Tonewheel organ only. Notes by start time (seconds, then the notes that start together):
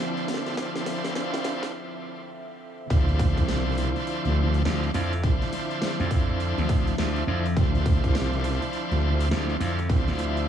Already playing: D4 E4 F4 C5
0.57 D4 E4 F4 C5
1.16 D4 E4 F4 C5
2.90 D4 E4 F4 C5
4.65 D4 E4 F4 C5
4.94 D4 E4 F4 C5
5.24 D4 E4 F4 C5
6.98 D4 E4 F4 C5
7.28 D4 E4 F4 C5
7.57 D4 E4 F4 C5
9.31 D4 E4 F4 C5
9.61 D4 E4 F4 C5
9.90 D4 E4 F4 C5